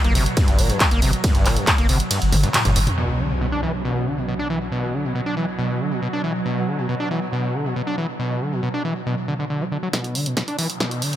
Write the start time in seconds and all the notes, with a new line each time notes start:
Already playing: B2 F#3
0.04 G1 A#3, closed hi-hat
0.15 G1 C3, open hi-hat
0.26 closed hi-hat
0.37 G2, kick, closed hi-hat, ride
0.48 G1, closed hi-hat
0.59 G1 A#2, open hi-hat
0.70 G2, closed hi-hat
0.80 G2, kick, clap, closed hi-hat, ride
0.91 G1 A#3, closed hi-hat
1.02 G1 C3, open hi-hat
1.13 closed hi-hat
1.24 G2, kick, closed hi-hat, ride
1.35 G1, closed hi-hat
1.46 G1 A#2, clap, open hi-hat
1.57 G2, closed hi-hat
1.67 G2, kick, clap, closed hi-hat, ride
1.78 G1 A#3, closed hi-hat
1.89 G1 C3, open hi-hat
2.00 closed hi-hat
2.11 G2, closed hi-hat, ride
2.22 G1, closed hi-hat
2.32 G1 A#2, open hi-hat, high tom
2.44 G2, closed hi-hat
2.54 G2, clap, closed hi-hat, mid tom, ride
2.65 G1 G2, closed hi-hat, mid tom
2.76 G1 G2, open hi-hat
2.87 closed hi-hat, mid tom
2.98 B2 F#3, crash, impact
3.19 D3
3.31 B2
3.41 B2
3.52 D4
3.63 E3
3.85 B2
4.06 D3
4.17 B2
4.28 B2
4.39 D4
4.50 E3
4.72 B2
4.93 D3
5.04 B2
5.15 B2
5.26 D4
5.37 E3
5.59 B2
5.80 D3
5.91 B2
6.02 B2
6.13 D4
6.24 E3
6.46 B2
6.67 D3
6.78 B2
6.89 B2
7.00 D4
7.11 E3
7.33 B2
7.54 D3
7.65 B2
7.76 B2
7.87 D4
7.98 E3
8.20 B2
8.41 D3
8.52 B2
8.63 B2
8.74 D4
8.85 E3
9.06 B2
9.28 D3
9.39 D3
9.50 D3
9.61 F#3
9.72 D3
9.83 F#3
9.93 B2, kick, snare, closed hi-hat, riser
10.04 closed hi-hat
10.15 D3, open hi-hat
10.26 B2, closed hi-hat
10.37 B2, kick, snare, closed hi-hat
10.48 D4, closed hi-hat
10.59 E3, open hi-hat
10.70 closed hi-hat
10.80 B2, kick, snare, closed hi-hat
10.91 closed hi-hat
11.02 D3, open hi-hat
11.13 B2, closed hi-hat